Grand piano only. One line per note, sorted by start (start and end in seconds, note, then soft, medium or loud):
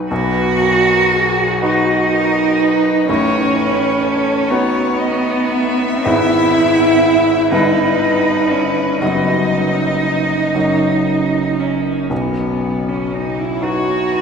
0.00 0.13 D#4 medium
0.00 0.13 F#4 soft
0.00 0.13 B4 soft
0.11 3.04 B1 medium
0.11 3.05 B2 soft
1.62 3.05 D#4 soft
1.62 3.05 F#4 soft
1.62 3.05 B4 soft
3.09 6.01 A1 medium
3.09 6.01 A2 medium
4.51 6.01 D#4 soft
4.51 6.02 F#4 soft
4.51 6.02 B4 medium
6.05 7.48 G#1 medium
6.05 7.48 G#2 medium
6.05 7.48 B3 soft
6.05 7.48 E4 soft
6.05 7.48 B4 soft
7.52 8.98 G1 medium
7.52 8.98 G2 medium
7.52 8.98 B3 soft
7.52 8.98 E4 soft
7.52 8.98 B4 soft
9.02 10.51 F#1 soft
9.02 10.51 F#2 soft
9.02 10.51 B3 soft
9.02 10.51 F#4 soft
9.02 10.51 B4 soft
10.54 12.07 F#1 soft
10.54 12.07 F#2 soft
10.54 12.07 C#4 soft
10.54 12.07 F#4 soft
10.54 12.07 A#4 soft
12.10 14.22 B1 soft
12.10 14.22 B2 soft
13.62 14.22 D#4 soft
13.62 14.22 F#4 soft
13.62 14.22 B4 soft